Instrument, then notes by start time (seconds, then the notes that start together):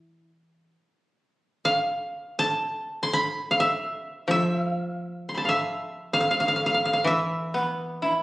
koto
Already playing: E3 E4
1.65 F5
2.39 A5
3.03 C6
3.13 B5
3.51 F5
3.60 E5
4.28 F3 E5
4.58 F5
5.29 C6
5.35 A5 B5
5.45 E5 F5
6.13 F5
6.21 F5
6.31 F5
6.40 F5
6.48 F5
6.56 F5
6.66 F5
6.74 F5
6.85 F5
6.93 F5
7.04 E3 E5
7.54 B3
8.02 E4